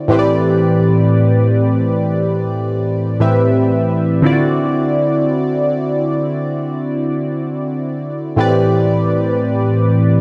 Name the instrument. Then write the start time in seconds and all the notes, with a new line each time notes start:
synth keys
0.08 A2 E3 C4 G4 B4
0.12 C5
0.19 D5
3.20 A2 E3 C4 G4 B4 E5
4.22 D3 C4 E4 F4
4.26 D5
4.32 F#4
8.36 A2 E3 C4 G4 B4
8.40 D5